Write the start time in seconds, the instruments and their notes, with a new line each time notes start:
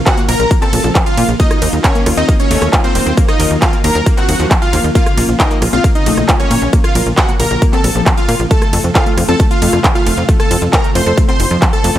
Already playing: analog synth pad C#3 F3 A#3 F4
0.06 supersaw synth F#4 F#5, kick, clap, closed hi-hat, ride
0.17 synth pluck A#3, closed hi-hat
0.29 analog synth bass A#1, synth pluck A#3, supersaw synth A#4 A#5, open hi-hat, ride
0.40 analog synth bass A#1, synth pluck A#4, closed hi-hat
0.51 synth pluck A#3, kick, closed hi-hat, ride
0.62 synth pluck C4, supersaw synth A4 A5, clap, closed hi-hat
0.73 analog synth bass A#1, open hi-hat, ride
0.84 analog synth bass A#1, synth pluck F3, closed hi-hat
0.95 kick, clap, closed hi-hat, ride
1.06 supersaw synth F4 F5, closed hi-hat
1.17 analog synth bass A#2, synth pluck A#3, open hi-hat, ride
1.29 analog synth bass A#1, closed hi-hat
1.40 analog synth pad D#3 F#3, synth pluck A#3, supersaw synth D#4 D#5, kick, closed hi-hat, ride
1.51 cross-stick, closed hi-hat
1.62 analog synth bass D#2, synth pluck A#3, open hi-hat, ride
1.73 analog synth bass D#2, closed hi-hat
1.84 supersaw synth C#4 C#5, synth pluck A#4, kick, clap, closed hi-hat, ride
1.95 synth pluck A#3, closed hi-hat
2.06 analog synth bass D#2, synth pluck F4, cross-stick, open hi-hat, ride
2.17 analog synth bass D#2, synth pluck C4, supersaw synth D#4 D#5, closed hi-hat
2.29 synth pluck A#3, kick, closed hi-hat, ride
2.40 supersaw synth C#4 C#5, closed hi-hat
2.51 analog synth bass D#2, synth pluck A3, open hi-hat, ride
2.62 analog synth bass D#2, cross-stick, closed hi-hat
2.73 synth pluck F4, kick, clap, closed hi-hat, ride
2.84 synth pluck A#3, supersaw synth C4 C5, closed hi-hat
2.95 analog synth bass D#1, synth pluck A#3, open hi-hat, ride
3.06 analog synth bass D#2, closed hi-hat
3.17 synth pluck A#3, kick, closed hi-hat, ride
3.28 supersaw synth D#4 D#5, cross-stick, closed hi-hat
3.40 analog synth bass D#2, synth pluck A#4, open hi-hat, ride
3.51 analog synth bass D#2, closed hi-hat
3.62 supersaw synth F4 F5, kick, clap, closed hi-hat, ride
3.73 synth pluck A#3, closed hi-hat
3.84 analog synth bass D#2, synth pluck A#3, supersaw synth A#4 A#5, open hi-hat, ride
3.95 analog synth bass D#2, synth pluck A#4, closed hi-hat
4.06 synth pluck A#3, kick, closed hi-hat, ride
4.17 synth pluck C4, supersaw synth F#4 F#5, clap, closed hi-hat
4.29 analog synth bass D#2, open hi-hat, ride
4.40 analog synth bass D#2, synth pluck F3, closed hi-hat
4.51 kick, clap, closed hi-hat, ride
4.62 supersaw synth F4 F5, closed hi-hat
4.73 analog synth bass D#2, synth pluck A#3, open hi-hat, ride
4.84 analog synth bass D#2, closed hi-hat
4.95 analog synth pad C#3 F3, synth pluck A#3, supersaw synth F4 F5, kick, closed hi-hat, ride
5.06 cross-stick, closed hi-hat
5.17 analog synth bass A#1, synth pluck A#3, open hi-hat, ride
5.29 analog synth bass A#1, closed hi-hat
5.40 supersaw synth D#4 D#5, synth pluck A#4, kick, clap, closed hi-hat, ride
5.51 synth pluck A#3, closed hi-hat
5.62 analog synth bass A#1, synth pluck F4, cross-stick, open hi-hat, ride
5.73 analog synth bass A#1, synth pluck C4, supersaw synth F4 F5, closed hi-hat
5.84 synth pluck A#3, kick, closed hi-hat, ride
5.95 supersaw synth D#4 D#5, closed hi-hat
6.06 analog synth bass A#1, synth pluck A3, open hi-hat, ride
6.17 analog synth bass A#1, cross-stick, closed hi-hat
6.29 synth pluck F4, kick, clap, closed hi-hat, ride
6.40 synth pluck A#3, supersaw synth C#4 C#5, closed hi-hat
6.51 analog synth bass A#2, synth pluck A#3, open hi-hat, ride
6.62 analog synth bass A#1, closed hi-hat
6.73 synth pluck A#3, kick, closed hi-hat, ride
6.84 supersaw synth F4 F5, cross-stick, closed hi-hat
6.95 analog synth bass A#1, synth pluck A#4, open hi-hat, ride
7.06 analog synth bass A#1, closed hi-hat
7.17 supersaw synth F#4 F#5, kick, clap, closed hi-hat, ride
7.29 synth pluck A#3, closed hi-hat
7.40 analog synth bass A#1, synth pluck A#3, supersaw synth A#4 A#5, open hi-hat, ride
7.51 analog synth bass A#1, synth pluck A#4, closed hi-hat
7.62 synth pluck A#3, kick, closed hi-hat, ride
7.73 synth pluck C4, supersaw synth A4 A5, clap, closed hi-hat
7.84 analog synth bass A#1, open hi-hat, ride
7.95 analog synth bass A#1, synth pluck F3, closed hi-hat
8.06 kick, clap, closed hi-hat, ride
8.17 supersaw synth F4 F5, closed hi-hat
8.29 analog synth bass A#2, synth pluck A#3, open hi-hat, ride
8.40 analog synth bass A#1, closed hi-hat
8.51 analog synth pad C3 A3 F4, synth pluck A3, supersaw synth A4 A5, kick, closed hi-hat, ride
8.62 cross-stick, closed hi-hat
8.73 analog synth bass F2, synth pluck A3, open hi-hat, ride
8.84 analog synth bass F2, closed hi-hat
8.95 supersaw synth F4 F5, synth pluck A4, kick, clap, closed hi-hat, ride
9.06 synth pluck A3, closed hi-hat
9.17 analog synth bass F2, synth pluck F4, cross-stick, open hi-hat, ride
9.29 analog synth bass F2, synth pluck C4, supersaw synth A4 A5, closed hi-hat
9.40 synth pluck A3, kick, closed hi-hat, ride
9.51 supersaw synth F4 F5, closed hi-hat
9.62 analog synth bass F2, synth pluck A3, open hi-hat, ride
9.73 analog synth bass F2, cross-stick, closed hi-hat
9.84 synth pluck F4, kick, clap, closed hi-hat, ride
9.95 synth pluck A3, supersaw synth F4 F5, closed hi-hat
10.06 analog synth bass F1, synth pluck A3, open hi-hat, ride
10.18 analog synth bass F2, closed hi-hat
10.29 synth pluck A3, kick, closed hi-hat, ride
10.40 supersaw synth A4 A5, cross-stick, closed hi-hat
10.51 analog synth bass F2, synth pluck A4, open hi-hat, ride
10.62 analog synth bass F2, closed hi-hat
10.73 supersaw synth A#4 A#5, kick, clap, closed hi-hat, ride
10.84 synth pluck A3, closed hi-hat
10.95 analog synth bass F2, synth pluck A3, supersaw synth C5 C6, open hi-hat, ride
11.06 analog synth bass F2, synth pluck A4, closed hi-hat
11.18 synth pluck A3, kick, closed hi-hat, ride
11.29 synth pluck C4, supersaw synth C5 C6, clap, closed hi-hat
11.40 analog synth bass F1, open hi-hat, ride
11.51 analog synth bass F2, synth pluck F3, closed hi-hat
11.62 kick, clap, closed hi-hat, ride
11.73 supersaw synth A4 A5, closed hi-hat
11.84 analog synth bass F2, synth pluck A3, open hi-hat, ride
11.95 analog synth bass F2, closed hi-hat